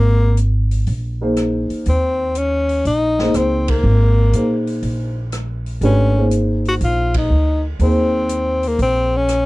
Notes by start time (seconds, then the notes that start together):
Already playing: G#1 A#3
0.37 closed hi-hat
0.71 open hi-hat
0.87 A#1, open hi-hat
1.21 A#3 D#4 G#4 C5
1.36 cross-stick, closed hi-hat
1.70 muted upright bass stroke, open hi-hat
1.86 D#2 C4, open hi-hat
2.35 C#4, closed hi-hat
2.69 open hi-hat
2.85 A#1 D#4, open hi-hat
3.19 A#3 D#4 G#4 C5, snare
3.34 C#2 C4, cross-stick, closed hi-hat
3.68 A#3, kick, ride
3.83 G#1
4.33 A#2 A#3 D#4 G#4 C5, closed hi-hat
4.67 open hi-hat
4.82 A#1, open hi-hat
5.32 cross-stick, closed hi-hat
5.66 open hi-hat
5.81 G#1 A3 C#4 D4 G4 B4, open hi-hat
6.17 A#3 D#4 G#4 C5
6.31 closed hi-hat
6.65 F#4, open hi-hat
6.81 A#1 F4, open hi-hat
7.14 D#4, kick, ride
7.30 D2
7.79 D#2 A#3 C4 D#4 G#4 C5, open hi-hat
8.29 closed hi-hat
8.63 open hi-hat
8.68 A#3
8.79 A#1 C4, open hi-hat
9.17 C#4
9.29 cross-stick, closed hi-hat